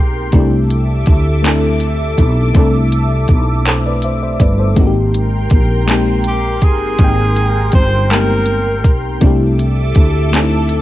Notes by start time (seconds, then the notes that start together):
Already playing: B1 G#3 A#3 C4 D#4 G4 G#4 A#4 G5 C6
0.32 C2 A3 C4 D4 A4 E5 D6, kick, closed hi-hat
0.37 E4 G4
0.70 closed hi-hat
1.06 D2, kick, closed hi-hat
1.42 A3 C4 D4, clap, closed hi-hat
1.46 E4 A4
1.80 closed hi-hat
2.18 B1, kick, closed hi-hat
2.54 C2 A3 C4 D4, kick, closed hi-hat
2.58 E4 A4
2.92 closed hi-hat
3.28 B1, kick, closed hi-hat
3.66 A4 C5, clap, closed hi-hat
3.86 B4 D5
4.02 C5 E5, closed hi-hat
4.23 C5 E5
4.40 G1 B4 D5, kick, closed hi-hat
4.59 A4 C5
4.75 G#1 G#3 A#3 C4 D#4 A#4 G5 C6, kick, closed hi-hat
4.81 F#4
4.87 G4
5.14 closed hi-hat
5.50 A#1, kick, closed hi-hat
5.86 G#3 A#3 C4 D#4, clap, closed hi-hat
5.91 G4
6.24 G4, closed hi-hat
6.62 G1 G#4, kick, closed hi-hat
6.99 G#1 G#3 A#3 C4 D#4 G5, kick, closed hi-hat
7.04 G5
7.36 closed hi-hat
7.72 G1 C5, kick, closed hi-hat
8.10 G#3 A#3 B3 D#4 A#4, clap, closed hi-hat
8.15 G4
8.19 C4
8.46 closed hi-hat
8.84 B1, kick, closed hi-hat
9.21 C2 A3 C4 D4 E4 A4 E5 D6, kick, closed hi-hat
9.26 G4
9.59 closed hi-hat
9.95 D2, kick, closed hi-hat
10.32 A3 C4 D4 D#4, clap, closed hi-hat
10.37 A4
10.42 E4
10.69 closed hi-hat